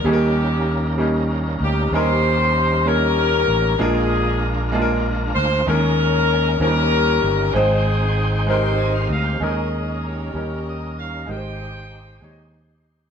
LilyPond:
<<
  \new Staff \with { instrumentName = "Saxophone section" } { \time 6/8 \key ees \mixolydian \tempo 4. = 64 << { g'4. r4 g'8 | c''4. bes'4. | aes'4. r4 c''8 | bes'4. bes'4. |
aes'4. c''4 f''8 | ees''4 des''4 ees''8 f''8 | g''2 r4 | } \\ { <bes des'>4. r4. | g'4. <des' g'>4. | <d' f'>4. r4. | des'4. <des' g'>4. |
<c' ees'>4. <ees' g'>4. | <aes' bes'>4 <g' bes'>4. r8 | <c'' ees''>2 r4 | } >> }
  \new Staff \with { instrumentName = "Tonewheel organ" } { \time 6/8 \key ees \mixolydian << { r2. | r2. | r2. | r2. |
r2 <ees'' aes''>16 <c'' f''>16 <bes' ees''>16 <g' c''>16~ | <g' c''>16 r2 r8. | r2. | } \\ { <g bes des' ees' aes' bes'>2.~ | <g bes des' ees' aes' bes'>2. | <aes bes d' f' bes'>2. | <aes bes des' ees' bes'>4. <g bes des' ees' bes'>4. |
<aes c' ees' c'' g''>2. | <aes des' ees' a' bes'>4. <g des' ees' bes'>4. | <aes ees' g' c''>2. | } >> }
  \new Staff \with { instrumentName = "Grand piano" } { \time 6/8 \key ees \mixolydian <g bes des' ees' aes' bes'>4 r8 <g bes des' ees' g'>4 r8 | <g bes des' ees' bes'>4 r8 <g bes des' ees' des''>4 r8 | <aes bes d' f' bes'>4 r8 <aes bes d' f' aes' bes'>4 r8 | <aes bes des' ees' bes'>4 r8 <f g bes des' ees' bes'>4 r8 |
<aes c' ees' c'' g''>4 r8 <aes c' ees' g' bes'>4 r8 | <aes des' ees' bes'>4 r8 <g des' ees' bes'>4 r8 | <aes ees' g' bes' c''>4 r8 <aes ees' g' des'' ees''>4 r8 | }
  \new Staff \with { instrumentName = "Grand piano" } { \clef bass \time 6/8 \key ees \mixolydian ees4. r4. | ees4. r4. | bes,4. r4. | ees4. ees4. |
aes,4. r4. | ees4. ees4. | aes,4. r4. | }
  \new Staff \with { instrumentName = "Fingered electric bass" } { \clef bass \time 6/8 \key ees \mixolydian ees,2~ ees,8 d,8 | ees,2~ ees,8 a,,8 | bes,,2~ bes,,8 d,8 | ees,4. ees,4 g,,8 |
aes,,2~ aes,,8 d,8 | ees,4. ees,4. | aes,,4. ees,4. | }
>>